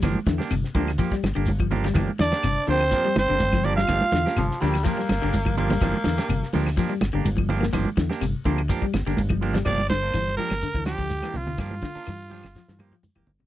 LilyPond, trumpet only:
\new Staff \with { instrumentName = "Trumpet" } { \time 4/4 \key g \dorian \tempo 4 = 125 r1 | r8 d''4 c''4 c''4 d''16 f''16~ | f''4~ f''16 r2 r8. | r1 |
r1 | d''8 c''4 bes'4 g'4 f'8 | f'2. r4 | }